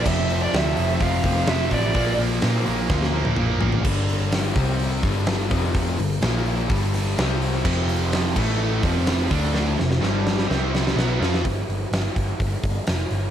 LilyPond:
<<
  \new Staff \with { instrumentName = "Lead electric guitar" } { \time 4/4 \key f \lydian \tempo 4 = 126 e''8. d''16 e''4 f''4 e''8 d''8~ | d''8 r2. r8 | r1 | r1 |
r1 | r1 | r1 | }
  \new Staff \with { instrumentName = "Overdriven electric guitar" } { \clef bass \time 4/4 \key f \lydian <f, c f>8 <f, c f>8 <f, c f>8 <f, c f>8 <f, c f>8 <f, c f>8 <f, c f>8 <f, c f>8 | <bes, f bes>8 <bes, f bes>8 <bes, f bes>8 <bes, f bes>8 <bes, f bes>8 <bes, f bes>8 <bes, f bes>8 <bes, f bes>8 | r1 | r1 |
<f, c f>4. <a, e a>4 <f, c f>4 <d a d'>8~ | <d a d'>8 <f, c>8 <g, d g>4 <c g c'>4 <b, fis b>8 <f c' f'>8 | r1 | }
  \new Staff \with { instrumentName = "Distorted electric guitar" } { \clef bass \time 4/4 \key f \lydian <f, c f>8 <f, c f>8 <f, c f>8 <f, c f>8 <f, c f>8 <f, c f>8 <f, c f>8 <f, c f>8 | <bes, f bes>8 <bes, f bes>8 <bes, f bes>8 <bes, f bes>8 <bes, f bes>8 <bes, f bes>8 <bes, f bes>8 <bes, f bes>8 | <g, d g>4. <c g c'>4 <g, d g>4 <f, c f>8~ | <f, c f>8 <g, d>8 <bes, f bes>4 <g, d g>4 <c g c'>4 |
<f, c f>4. <a, e a>4 <f, c f>4 <d a d'>8~ | <d a d'>8 <f, c>8 <g, d g>4 <c g c'>4 <b, fis b>8 <f c' f'>8 | r1 | }
  \new Staff \with { instrumentName = "Distorted electric guitar" } { \clef bass \time 4/4 \key f \lydian <f, c f>4. <f, c f>2~ <f, c f>8 | <bes, f bes>4. <bes, f bes>2~ <bes, f bes>8 | <g, d g>4. <c g c'>4 <g, d g>4 <f, c f>8~ | <f, c f>8 <g, d>8 <bes, f bes>4 <g, d g>4 <c g c'>4 |
<f, c f>4. <a, e a>4 <f, c f>4 <d a d'>8~ | <d a d'>8 <f, c>8 <g, d g>4 <c g c'>4 <b, fis b>8 <f c' f'>8 | r1 | }
  \new Staff \with { instrumentName = "Picked electric bass" } { \clef bass \time 4/4 \key f \lydian f,,4 d,8 f,,8 f,,8 f,,8 f,,8 a,,8 | bes,,8 bes,,8 bes,8 bes,,8 d,4 bes,,8 a,,8 | g,,4. c,4 g,,4 f,,8~ | f,,8 g,,8 bes,,4 g,,4 c,4 |
f,,4. a,,4 f,,4 d,8~ | d,8 f,,8 g,,4 c,4 b,,8 f,8 | g,,8 g,,8 g,,8 g,,8 g,,8 g,,8 f,,8 g,,8 | }
  \new DrumStaff \with { instrumentName = "Drums" } \drummode { \time 4/4 <cymc bd>8 hho8 <hho sn>8 hho8 <hho bd>8 <hho bd>16 sn16 <hho sn>8 <hho bd>8 | <hho bd>8 hho8 <hho sn>8 hho8 <bd sn>16 sn8 tommh16 toml8 tomfh16 tomfh16 | <cymc bd>8 hho8 <hho sn>8 <hho bd>8 hho8 <hho bd sn>8 <hho sn>8 <hho bd>8 | <hho bd>8 hho8 <hho sn>8 hho8 <hho bd>8 <hho sn>8 <hho sn>8 hho16 sn16 |
<cymc bd>8 hho8 <hho sn>8 <cymc bd>8 r8 <hho bd sn>8 <hho sn>8 <hho bd>16 sn16 | sn8 sn16 sn16 sn8 sn16 sn16 sn8 sn16 sn16 sn8 sn16 sn16 | <hho bd>8 hho8 <hho sn>8 <hho bd>8 <hho bd>8 <hho bd>8 <hho sn>8 hho8 | }
>>